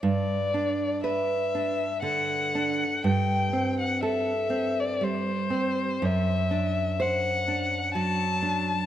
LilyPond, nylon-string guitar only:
\new Staff \with { instrumentName = "Nylon-string guitar" } { \time 3/4 \key g \major \tempo 4 = 60 g,8 d'8 b'8 d'8 d8 d'8 | g,8 c'8 a'8 c'8 g8 c'8 | fis,8 d'8 c''8 d'8 fis8 d'8 | }